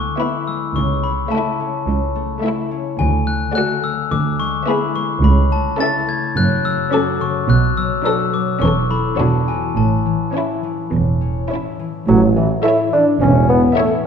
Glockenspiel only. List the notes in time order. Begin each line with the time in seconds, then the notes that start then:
Already playing: C#6
0.20 B5
0.47 E6
0.76 C#6
1.04 B5
1.32 A5
2.99 G#5
3.27 F#6
3.55 F#6
3.84 E6
4.11 D6
4.40 C#6
4.68 B5
4.96 C#6
5.24 B5
5.52 A5
5.80 A6
6.09 G#6
6.37 F#6
6.65 E6
6.93 D6
7.21 C#6
7.50 F#6
7.77 E6
8.06 E6
8.34 D6
8.62 C#6
8.91 B5
9.19 A5
9.48 G#5
9.77 A5